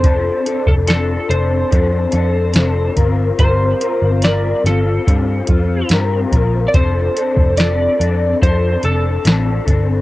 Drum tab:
HH |x-x-x-x-x-x-x-x-|x-x-x-x-x-x-x-x-|x-x-x-x-x-x-x-x-|
SD |----o-------o---|----o-o-----o---|----o-------o---|
BD |o--o----o-----o-|o-------o-o---o-|o--o----o-----o-|